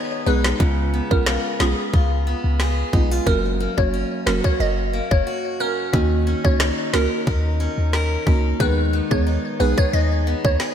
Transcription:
Already playing: steel-string acoustic guitar D#3 B3 D#4 G#4
0.26 808-style bass B1, marimba G#3 B3 D#4 G#4, steel-string acoustic guitar D#4, synth pluck B4
0.44 cross-stick, snare
0.60 808-style bass C#2, steel-string acoustic guitar C#3, marimba G#3 B3 C#4 F4, kick
0.94 steel-string acoustic guitar B3
1.11 808-style bass B1, marimba G#3 B3 C#4 F4, synth pluck A#4, kick
1.26 steel-string acoustic guitar F4, cross-stick, snare
1.60 808-style bass B1, marimba G#3 B3 C#4 F4, synth pluck G#4, steel-string acoustic guitar G#4, cross-stick, snare
1.93 808-style bass C#2, steel-string acoustic guitar F4, kick
2.27 steel-string acoustic guitar B3
2.44 808-style bass C#2
2.60 steel-string acoustic guitar G#4, snare
2.93 808-style bass B1, marimba G#3 B3 C#4 F4, steel-string acoustic guitar D#4, kick
3.11 steel-string acoustic guitar F4
3.26 808-style bass F#1, steel-string acoustic guitar F#2, marimba F#3 A#3 C#4 F#4, synth pluck A#4, kick
3.60 steel-string acoustic guitar A#3
3.77 808-style bass F#1, marimba F#3 A#3 C#4 F#4, synth pluck C#5, kick
3.94 steel-string acoustic guitar C#4
4.26 808-style bass F1, marimba F#3 A#3 C#4 F#4, steel-string acoustic guitar F#4, synth pluck A#4, cross-stick, snare
4.44 synth pluck C#5, kick
4.60 808-style bass F#1, steel-string acoustic guitar C#4, synth pluck D#5
4.93 steel-string acoustic guitar A#3
5.11 808-style bass F#1, synth pluck C#5, kick
5.27 steel-string acoustic guitar F#4
5.60 steel-string acoustic guitar C#4, synth pluck A#4
5.93 808-style bass D#2, steel-string acoustic guitar D#3, marimba A#3 C#4 D#4 F#4, kick
6.27 steel-string acoustic guitar C#4
6.44 808-style bass C#2, marimba A#3 C#4 D#4 F#4, synth pluck C#5, kick
6.60 steel-string acoustic guitar D#4, cross-stick, snare
6.93 808-style bass C#2, marimba A#3 C#4 D#4 F#4, steel-string acoustic guitar A#4, synth pluck A#4, cross-stick, snare
7.27 808-style bass D#2, steel-string acoustic guitar D#4, kick
7.60 steel-string acoustic guitar C#4
7.78 808-style bass D#2
7.93 steel-string acoustic guitar A#4, snare
8.27 808-style bass C#2, marimba A#3 C#4 D#4 F#4, steel-string acoustic guitar D#4, kick
8.60 808-style bass D#2, steel-string acoustic guitar D#3, marimba G#3 B3 D#4 G#4, synth pluck B4, kick
8.93 steel-string acoustic guitar B3
9.11 808-style bass D#2, marimba G#3 B3 D#4 G#4, synth pluck C#5, kick
9.27 steel-string acoustic guitar D#4
9.60 808-style bass B1, marimba G#3 B3 D#4 G#4, steel-string acoustic guitar G#4, synth pluck B4
9.78 synth pluck C#5, kick
9.93 808-style bass D#2, steel-string acoustic guitar D#4, synth pluck D#5
10.27 steel-string acoustic guitar B3
10.45 808-style bass D#2, synth pluck C#5, kick
10.60 steel-string acoustic guitar G#4, snare

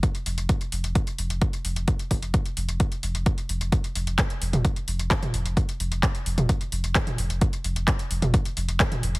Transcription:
0.03 kick, closed hi-hat
0.15 closed hi-hat
0.26 sub bass F1, open hi-hat
0.38 sub bass F1, closed hi-hat
0.49 kick, closed hi-hat
0.61 closed hi-hat
0.72 sub bass F1, open hi-hat
0.84 sub bass F1, closed hi-hat
0.95 kick, closed hi-hat
1.07 closed hi-hat
1.18 sub bass F1, open hi-hat
1.30 sub bass F1, closed hi-hat
1.42 kick, closed hi-hat
1.53 closed hi-hat
1.65 sub bass F1, open hi-hat
1.76 sub bass F1, closed hi-hat
1.88 kick, closed hi-hat
1.99 closed hi-hat
2.11 sub bass F1, kick, open hi-hat
2.22 sub bass F1, closed hi-hat
2.34 kick, closed hi-hat
2.46 closed hi-hat
2.57 sub bass F1, open hi-hat
2.68 sub bass F1, closed hi-hat
2.80 kick, closed hi-hat
2.92 closed hi-hat
3.03 sub bass F1, open hi-hat
3.15 sub bass F1, closed hi-hat
3.26 kick, closed hi-hat
3.38 closed hi-hat
3.49 sub bass F1, open hi-hat
3.61 sub bass F1, closed hi-hat
3.72 kick, closed hi-hat
3.84 closed hi-hat
3.95 sub bass F1, open hi-hat
4.07 sub bass F1, closed hi-hat
4.18 kick, clap, closed hi-hat
4.30 closed hi-hat
4.41 sub bass F1, open hi-hat
4.53 sub bass F1, closed hi-hat, mid tom
4.65 kick, closed hi-hat
4.76 closed hi-hat
4.88 sub bass F1, open hi-hat
4.99 sub bass F1, closed hi-hat
5.11 kick, clap, closed hi-hat
5.23 closed hi-hat, mid tom
5.34 sub bass F1, open hi-hat
5.45 sub bass F1, closed hi-hat
5.57 kick, closed hi-hat
5.69 closed hi-hat
5.80 sub bass F1, open hi-hat
5.91 sub bass F1, closed hi-hat
6.03 kick, clap, closed hi-hat
6.15 closed hi-hat
6.26 sub bass F1, open hi-hat
6.38 sub bass F1, closed hi-hat, mid tom
6.49 kick, closed hi-hat
6.61 closed hi-hat
6.72 sub bass F1, open hi-hat
6.84 sub bass F1, closed hi-hat
6.95 kick, clap, closed hi-hat
7.07 closed hi-hat, mid tom
7.18 sub bass F1, open hi-hat
7.30 sub bass F1, closed hi-hat
7.41 kick, closed hi-hat
7.53 closed hi-hat
7.64 sub bass F1, open hi-hat
7.76 sub bass F1, closed hi-hat
7.88 kick, clap, closed hi-hat
7.99 closed hi-hat
8.11 sub bass F1, open hi-hat
8.22 sub bass F1, closed hi-hat, mid tom
8.34 kick, closed hi-hat
8.45 closed hi-hat
8.57 sub bass F1, open hi-hat
8.69 sub bass F1, closed hi-hat
8.80 kick, clap, closed hi-hat
8.92 closed hi-hat, mid tom
9.03 sub bass F1, open hi-hat
9.15 sub bass F1, closed hi-hat

